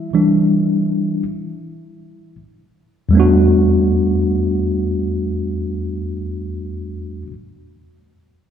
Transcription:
0.00 2.35 E4 medium
0.00 2.34 E5 medium
0.13 1.22 E3 soft
0.13 1.23 G3 soft
0.13 1.23 D4 medium
3.09 7.22 E2 medium
3.09 7.24 G3 medium
3.13 7.26 A3 medium
3.13 7.28 B3 medium
3.17 7.31 D4 medium
3.17 7.33 F#4 medium

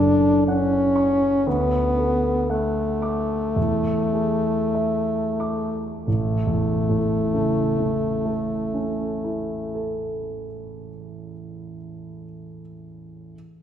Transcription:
0.00 1.42 F#1 soft
0.00 0.46 D4 medium
0.00 0.76 A4 soft
0.47 1.49 C#4 medium
0.47 1.26 F#5 soft
0.96 1.46 C#6 soft
1.47 3.52 D2 soft
1.47 2.52 B3 medium
1.98 2.81 A4 soft
2.50 5.88 A3 soft
2.50 3.34 F#5 soft
3.02 3.56 D6 soft
3.56 6.02 E2 soft
4.13 5.12 G#4 soft
4.75 5.80 E5 soft
5.40 6.06 D6 soft
6.05 10.06 A1 soft
6.05 10.04 A3 soft
6.47 10.46 E2 soft
6.89 10.88 A2 soft
7.33 11.33 C#3 soft
7.78 11.77 E3 soft
8.25 12.24 A3 soft
8.74 12.60 C#4 soft
9.24 12.61 E4 soft
9.75 12.61 A4 soft

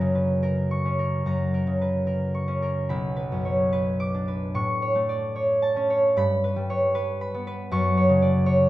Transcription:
0.00 1.25 F#2 medium
0.00 1.66 C#3 soft
0.00 0.84 C#4 medium
0.00 0.42 A#4 medium
0.00 1.25 A#5 medium
0.00 0.70 C#6 medium
0.15 0.62 B4 soft
0.43 0.98 A#4 medium
0.71 2.33 C#6 medium
0.85 2.46 C#4 soft
0.99 1.53 A#4 soft
1.26 2.93 F#2 medium
1.26 2.93 A#5 medium
1.54 2.06 A#4 medium
1.67 2.93 C#3 soft
1.81 2.26 B4 soft
2.07 2.61 A#4 medium
2.34 2.93 C#6 medium
2.48 2.93 C#4 soft
2.62 2.93 A#4 soft
2.89 4.58 B1 medium
2.89 4.58 B5 medium
3.16 3.71 B4 soft
3.32 4.58 F#2 soft
3.45 3.92 C#5 soft
3.73 4.27 B4 medium
4.00 4.58 D6 medium
4.14 4.58 D4 soft
4.28 4.58 B4 soft
4.54 6.21 A2 medium
4.54 6.21 C#6 medium
4.82 5.34 C#5 medium
4.95 6.21 A3 soft
5.09 5.55 D5 soft
5.36 5.89 C#5 medium
5.62 6.20 A5 medium
5.76 6.20 C#4 medium
5.90 6.21 C#5 medium
6.17 7.74 G2 medium
6.17 7.20 B5 medium
6.44 6.94 B4 medium
6.56 7.74 G3 medium
6.70 7.14 C#5 medium
6.95 7.46 B4 medium
7.21 7.74 B5 medium
7.34 7.75 B3 medium
7.47 7.75 B4 medium
7.71 8.69 F#2 medium
7.71 8.69 C#6 loud
7.97 8.45 C#5 medium
8.09 8.69 C#3 medium
8.22 8.65 D5 medium
8.46 8.69 C#5 medium

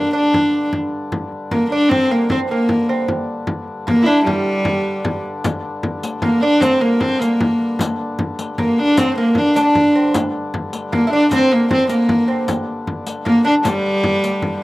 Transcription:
0.00 0.72 G2 medium
0.00 0.71 D3 medium
0.00 0.14 A#3 medium
0.00 0.14 D4 medium
0.13 0.68 D4 medium
0.13 0.69 D4 medium
0.13 frame drum soft
0.34 frame drum medium
0.53 frame drum soft
0.73 5.42 G2 medium
0.73 5.44 D3 medium
0.73 frame drum medium
1.12 frame drum medium
1.32 frame drum soft
1.51 1.70 A#3 medium
1.51 1.72 A#3 medium
1.51 frame drum medium
1.71 1.91 D4 medium
1.71 1.90 D4 medium
1.89 2.13 C4 medium
1.89 2.11 C4 medium
1.89 frame drum medium
2.11 2.30 A#3 medium
2.11 2.31 A#3 medium
2.30 2.39 C4 medium
2.30 2.51 C4 medium
2.30 frame drum medium
2.49 3.04 A#3 medium
2.49 2.89 A#3 medium
2.49 frame drum soft
2.69 frame drum medium
2.89 3.07 C4 medium
3.08 frame drum medium
3.47 frame drum medium
3.67 frame drum soft
3.87 4.07 A#3 medium
3.87 4.04 A#3 medium
3.87 frame drum medium
4.03 4.25 D4 medium
4.03 4.27 D4 medium
4.03 4.08 E4 medium
4.26 5.21 G3 medium
4.26 frame drum medium
4.46 frame drum soft
4.65 frame drum medium
5.05 frame drum medium
5.25 frame drum soft
5.44 10.14 G2 medium
5.44 10.14 D3 medium
5.44 riq medium
5.44 frame drum medium
5.83 frame drum medium
6.03 riq medium
6.03 frame drum soft
6.22 6.43 A#3 medium
6.22 frame drum medium
6.41 6.62 D4 medium
6.41 6.63 D4 medium
6.60 6.83 C4 medium
6.60 6.81 C4 medium
6.60 riq medium
6.60 frame drum medium
6.81 7.20 A#3 medium
6.81 7.02 A#3 medium
7.00 7.21 C4 medium
7.00 frame drum medium
7.20 7.79 A#3 medium
7.20 7.76 A#3 medium
7.20 riq soft
7.20 frame drum soft
7.40 frame drum medium
7.79 riq medium
7.79 frame drum medium
8.19 frame drum medium
8.39 riq medium
8.39 frame drum soft
8.58 8.98 A#3 medium
8.58 8.81 A#3 medium
8.58 frame drum medium
8.79 8.99 D4 loud
8.97 9.17 C4 medium
8.97 9.11 C4 medium
8.97 riq medium
8.97 frame drum medium
9.12 9.17 C4 medium
9.18 9.58 A#3 medium
9.18 9.39 A#3 medium
9.35 9.57 D4 medium
9.35 frame drum medium
9.56 9.96 D4 medium
9.56 10.12 D4 medium
9.56 riq medium
9.75 frame drum medium
9.95 10.13 C4 medium
9.95 frame drum soft
10.14 14.63 G2 medium
10.14 14.63 D3 medium
10.14 riq medium
10.14 frame drum medium
10.54 frame drum medium
10.73 riq soft
10.73 frame drum soft
10.92 11.08 A#3 medium
10.92 11.10 A#3 medium
10.92 frame drum medium
11.07 11.30 D4 loud
11.07 11.12 E4 medium
11.13 11.33 D4 medium
11.31 11.51 C4 medium
11.31 11.54 C4 medium
11.31 riq medium
11.31 frame drum medium
11.52 11.71 A#3 medium
11.71 11.89 C4 medium
11.71 11.90 C4 medium
11.71 frame drum medium
11.89 12.28 A#3 medium
11.89 12.45 A#3 medium
11.89 riq soft
11.89 frame drum soft
12.09 frame drum medium
12.28 12.47 C4 medium
12.48 riq medium
12.48 frame drum medium
12.87 frame drum medium
13.07 riq medium
13.07 frame drum soft
13.25 13.46 A#3 medium
13.25 13.44 A#3 medium
13.25 frame drum medium
13.45 13.65 D4 medium
13.45 13.54 D4 loud
13.64 14.58 G3 medium
13.64 riq medium
13.64 frame drum medium
14.04 frame drum medium
14.24 riq medium
14.42 frame drum medium

